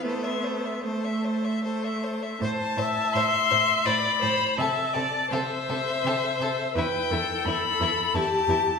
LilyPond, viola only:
\new Staff \with { instrumentName = "Viola" } { \time 3/4 \key a \minor \tempo 4 = 83 a4 a4 a4 | c''8 e''4. d''8 c''8 | e''8 d''8 c''2 | b'8 a'4. g'4 | }